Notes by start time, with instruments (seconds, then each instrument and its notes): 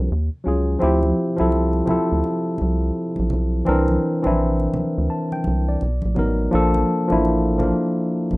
Already playing: tine electric piano F3 C4 D4 A#4
0.12 analog synth bass D#2
0.44 analog synth bass C#2, tine electric piano F#3 C#4 F4
0.48 tine electric piano G#4
0.79 analog synth bass D2, tine electric piano F3 C4 E4, muted conga
0.83 tine electric piano G4
1.03 high conga
1.36 tine electric piano F3 C4 E4, high conga
1.41 analog synth bass C2, tine electric piano A4
1.52 muted conga
1.73 muted conga
1.86 tine electric piano F3 C4 E4, high conga, low conga
1.91 analog synth bass D2, tine electric piano A4
2.12 analog synth bass D2
2.24 muted conga
2.58 analog synth bass C2, high conga
3.16 analog synth bass A#1, high conga
3.30 analog synth bass B1, low conga
3.65 analog synth bass C2, tine electric piano E3 C4 D4 A#4, muted conga
3.88 muted conga, high conga
4.22 analog synth bass A#1, tine electric piano E3 C4 D4, high conga
4.27 tine electric piano E4
4.60 muted conga
4.74 analog synth bass D2, high conga, low conga
4.98 analog synth bass D2
5.10 tine electric piano A5
5.32 tine electric piano G5, muted conga
5.44 analog synth bass C2, high conga
5.69 tine electric piano D5
5.81 analog synth bass B1, muted conga
6.02 analog synth bass A#1, muted conga, high conga
6.15 analog synth bass A1, tine electric piano F#3 B3 D#4 A#4, low conga
6.51 analog synth bass A#1, tine electric piano F3 A#3 D4 A4, muted conga
6.74 muted conga, high conga
7.08 analog synth bass A1, tine electric piano F3 A#3 D4, high conga
7.12 tine electric piano E4
7.25 muted conga
7.58 tine electric piano F3 A#3 D4 A#4, high conga, low conga
8.31 analog synth bass A#1, high conga